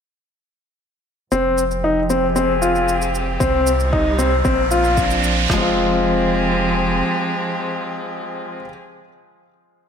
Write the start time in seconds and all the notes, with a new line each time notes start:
1.32 F1 F3 C4, riser, shaker
1.58 shaker
1.71 G4, shaker
1.84 D#4
1.93 C4
2.10 C4, shaker
2.25 G#4
2.36 C4, shaker
2.62 F4, shaker
2.75 shaker
2.88 shaker
3.02 shaker
3.15 shaker
3.40 C2 C3 C4, kick, shaker
3.67 shaker
3.80 shaker
3.87 G3 D#4
3.93 D#4, kick
4.18 C4, shaker
4.45 A#1 A#2 C4, kick, shaker
4.71 F4, shaker
4.84 shaker
4.92 F3 C4 D4
4.97 kick, shaker
5.10 shaker
5.23 shaker
5.49 F1 F3, kick, snare, clap
5.54 G#3 C4
5.62 F4 G4
5.73 G#4